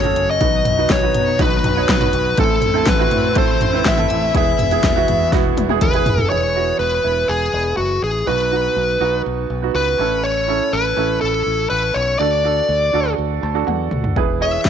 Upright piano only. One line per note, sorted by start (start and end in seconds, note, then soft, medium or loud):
0.00 0.03 C#4 medium
0.00 0.38 C#4 medium
0.00 0.04 F#4 medium
0.00 0.38 F#4 medium
0.00 0.43 G#4 medium
0.00 0.05 A4 medium
0.00 0.43 G#5 medium
0.05 0.39 A4 medium
0.40 1.11 B2 medium
0.40 0.75 D#4 medium
0.40 0.75 F#4 medium
0.40 0.76 B4 medium
0.77 1.01 D#4 medium
0.77 1.01 F#4 medium
0.77 1.02 B4 medium
1.02 1.37 D#4 medium
1.02 1.37 F#4 medium
1.02 1.38 B4 medium
1.39 1.73 D#4 medium
1.39 1.74 F#4 medium
1.39 1.74 B4 medium
1.76 1.99 D#4 medium
1.76 1.99 F#4 medium
1.76 2.00 C#5 medium
2.00 2.35 D#4 medium
2.00 2.35 F#4 medium
2.00 2.36 B4 medium
2.38 3.08 A2 medium
2.38 2.72 C4 medium
2.38 2.73 E4 medium
2.38 2.73 A4 medium
2.74 2.97 C4 medium
2.74 2.98 E4 medium
2.74 2.98 A4 medium
2.99 3.34 C4 medium
2.99 3.34 E4 medium
2.99 3.34 F#4 medium
3.35 3.70 C4 medium
3.35 3.70 E4 medium
3.35 3.71 A4 medium
3.73 3.95 C4 medium
3.73 3.96 E4 medium
3.73 3.97 B4 medium
3.97 4.31 C4 medium
3.97 4.32 E4 medium
3.97 4.32 A4 medium
4.34 5.04 E3 medium
4.34 4.69 B3 medium
4.34 4.69 E4 medium
4.34 4.69 G#4 medium
4.71 4.94 B3 medium
4.71 4.94 E4 medium
4.71 4.95 G#4 medium
4.95 5.30 B3 medium
4.95 5.30 E4 medium
4.95 5.31 F#4 medium
5.32 5.67 B3 medium
5.32 5.67 E4 medium
5.32 5.67 F#4 medium
5.69 5.92 B3 medium
5.69 5.92 E4 medium
5.69 5.93 G#4 medium
5.93 6.28 B3 medium
5.93 6.28 E4 medium
5.93 6.29 G#4 medium
6.30 7.00 E3 medium
6.30 6.53 B3 medium
6.30 6.53 E4 medium
6.30 6.54 G#4 medium
6.55 7.01 B3 medium
6.55 7.01 E4 medium
6.55 7.02 F#4 medium
7.03 7.95 B3 medium
7.03 7.96 E4 medium
7.03 7.96 B4 medium
8.26 8.97 B2 soft
8.26 8.50 B3 medium
8.26 8.50 D#4 soft
8.26 8.50 F#4 medium
8.51 8.97 B3 medium
8.51 8.97 D#4 medium
8.51 8.98 F#4 medium
9.00 9.57 B3 medium
9.00 9.58 D#4 medium
9.00 9.58 F#4 medium
9.62 9.99 B3 medium
9.62 9.99 D#4 medium
9.62 10.00 F#4 medium
9.98 10.69 A2 soft
9.98 10.44 C#4 medium
9.98 10.45 E4 medium
9.98 10.45 A4 medium
10.48 10.94 C#4 medium
10.48 10.94 E4 medium
10.48 10.94 A4 medium
10.96 11.88 C#4 medium
10.96 11.89 E4 medium
10.96 11.89 A4 medium
12.19 12.90 D3 medium
12.19 12.42 D4 medium
12.19 12.43 F#4 medium
12.19 12.43 A4 medium
12.44 12.90 D4 medium
12.44 12.90 F#4 medium
12.44 12.91 A4 medium
12.93 13.50 D4 medium
12.93 13.51 F#4 medium
12.93 13.51 A4 medium
13.42 13.65 A5 medium
13.54 14.12 D4 medium
13.54 14.12 F#4 medium
13.54 14.12 A4 medium
13.67 14.13 F#5 medium
14.16 14.70 E3 medium
14.16 14.39 E4 medium
14.16 14.40 G#4 medium
14.16 14.40 B4 medium
14.40 14.70 E4 medium
14.40 14.70 G#4 medium
14.40 14.70 C#5 medium